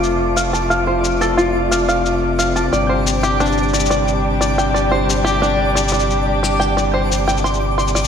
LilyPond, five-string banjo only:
\new Staff \with { instrumentName = "Five-string banjo" } { \time 4/4 \key g \dorian \tempo 4 = 89 f''8 f''16 a''16 f''16 c''8 a'16 f'8 f''16 f''8. f''16 a''16 | d''16 c''8 g'16 d'8 d''16 d''8. d''16 g''16 d''16 c''8 g'16 | d'8 d''16 d''8. d''16 g''16 d''16 c''16 r16 g''16 c'''16 r16 c'''16 d''16 | }